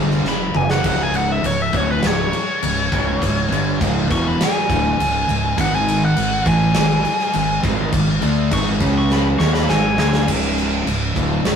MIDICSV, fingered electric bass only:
0, 0, Header, 1, 3, 480
1, 0, Start_track
1, 0, Tempo, 590551
1, 687, Time_signature, 4, 2, 24, 8
1, 9394, End_track
2, 0, Start_track
2, 0, Title_t, "Fingered electric bass"
2, 0, Program_c, 0, 33
2, 0, Note_on_c, 0, 31, 89
2, 188, Note_off_c, 0, 31, 0
2, 195, Note_on_c, 0, 30, 77
2, 423, Note_off_c, 0, 30, 0
2, 432, Note_on_c, 0, 30, 75
2, 663, Note_off_c, 0, 30, 0
2, 685, Note_on_c, 0, 25, 96
2, 1136, Note_off_c, 0, 25, 0
2, 1167, Note_on_c, 0, 25, 84
2, 1392, Note_off_c, 0, 25, 0
2, 1409, Note_on_c, 0, 26, 92
2, 1633, Note_off_c, 0, 26, 0
2, 1654, Note_on_c, 0, 25, 76
2, 1877, Note_off_c, 0, 25, 0
2, 2137, Note_on_c, 0, 25, 73
2, 2359, Note_off_c, 0, 25, 0
2, 2375, Note_on_c, 0, 25, 92
2, 2598, Note_off_c, 0, 25, 0
2, 2616, Note_on_c, 0, 25, 84
2, 2839, Note_off_c, 0, 25, 0
2, 2858, Note_on_c, 0, 31, 99
2, 3080, Note_off_c, 0, 31, 0
2, 3101, Note_on_c, 0, 25, 97
2, 3321, Note_off_c, 0, 25, 0
2, 3341, Note_on_c, 0, 28, 92
2, 3562, Note_off_c, 0, 28, 0
2, 3816, Note_on_c, 0, 26, 86
2, 4038, Note_off_c, 0, 26, 0
2, 4057, Note_on_c, 0, 25, 76
2, 4279, Note_off_c, 0, 25, 0
2, 4300, Note_on_c, 0, 25, 77
2, 4521, Note_off_c, 0, 25, 0
2, 4534, Note_on_c, 0, 32, 93
2, 4981, Note_off_c, 0, 32, 0
2, 5023, Note_on_c, 0, 32, 90
2, 5241, Note_off_c, 0, 32, 0
2, 5253, Note_on_c, 0, 33, 93
2, 5475, Note_off_c, 0, 33, 0
2, 5503, Note_on_c, 0, 32, 79
2, 5721, Note_off_c, 0, 32, 0
2, 5980, Note_on_c, 0, 32, 84
2, 6198, Note_off_c, 0, 32, 0
2, 6206, Note_on_c, 0, 32, 94
2, 6430, Note_off_c, 0, 32, 0
2, 6447, Note_on_c, 0, 32, 78
2, 6670, Note_off_c, 0, 32, 0
2, 6687, Note_on_c, 0, 38, 101
2, 6910, Note_off_c, 0, 38, 0
2, 6923, Note_on_c, 0, 32, 101
2, 7147, Note_off_c, 0, 32, 0
2, 7159, Note_on_c, 0, 37, 99
2, 7608, Note_off_c, 0, 37, 0
2, 7640, Note_on_c, 0, 39, 97
2, 7865, Note_off_c, 0, 39, 0
2, 7876, Note_on_c, 0, 32, 95
2, 8102, Note_off_c, 0, 32, 0
2, 8109, Note_on_c, 0, 38, 102
2, 8338, Note_off_c, 0, 38, 0
2, 8358, Note_on_c, 0, 25, 88
2, 8806, Note_off_c, 0, 25, 0
2, 8827, Note_on_c, 0, 25, 84
2, 9056, Note_off_c, 0, 25, 0
2, 9070, Note_on_c, 0, 26, 90
2, 9297, Note_off_c, 0, 26, 0
2, 9310, Note_on_c, 0, 25, 73
2, 9394, Note_off_c, 0, 25, 0
2, 9394, End_track
3, 0, Start_track
3, 0, Title_t, "Muted fingered electric bass strokes"
3, 3585, Note_on_c, 9, 29, 41
3, 3666, Note_off_c, 9, 29, 0
3, 9394, End_track
0, 0, End_of_file